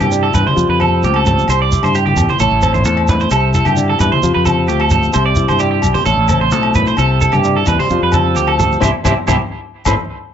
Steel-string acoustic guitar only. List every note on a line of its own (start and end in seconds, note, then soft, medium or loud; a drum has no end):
0.00 0.54 C3 medium
0.00 0.55 E4 medium
0.00 0.33 G4 medium
0.11 1.03 G3 medium
0.34 0.55 G4 medium
0.56 1.45 F3 medium
0.56 1.25 G4 medium
0.80 1.71 C4 medium
1.03 1.46 A3 medium
1.26 1.47 G4 medium
1.49 2.16 G4 medium
1.49 muted steel-string acoustic guitar stroke medium
1.72 2.38 E4 medium
1.95 muted steel-string acoustic guitar stroke medium
2.17 2.37 G4 medium
2.39 3.31 A2 medium
2.39 3.07 E4 medium
2.62 3.54 C4 medium
2.85 3.29 A3 medium
3.09 3.32 E4 medium
3.31 4.20 C3 medium
3.31 4.21 G4 medium
3.54 4.20 E4 medium
3.76 3.99 D3 medium
4.00 4.22 E3 medium
4.23 5.12 F3 medium
4.23 4.90 G4 medium
4.46 5.36 C4 medium
4.68 5.11 A3 medium
4.91 5.12 G4 medium
5.13 6.03 C3 medium
5.13 5.82 G4 medium
5.36 5.81 E4 medium
5.59 6.05 G3 medium
5.82 5.94 E4 medium
5.94 6.06 G4 medium
6.06 6.98 A2 medium
6.06 6.74 E4 medium
6.30 7.21 C4 medium
6.52 6.96 A3 medium
6.75 6.98 E4 medium
6.98 7.87 C3 medium
6.98 7.66 G4 medium
7.22 7.65 E4 medium
7.44 8.34 G3 medium
7.66 7.80 E4 medium
7.80 7.90 G4 medium
7.90 8.79 F3 medium
7.90 8.58 G4 medium
8.14 8.80 C4 medium
8.35 8.79 A3 medium
8.59 8.79 G4 medium
8.80 8.89 C4 loud
8.80 8.89 E4 loud
8.80 8.89 G4 loud
9.04 9.12 C4 loud
9.04 9.12 E4 loud
9.04 9.12 G4 loud
9.28 9.36 C4 loud
9.28 9.36 E4 loud
9.28 9.35 G4 loud
9.87 9.94 C4 loud
9.87 9.94 E4 medium
9.87 9.94 A4 loud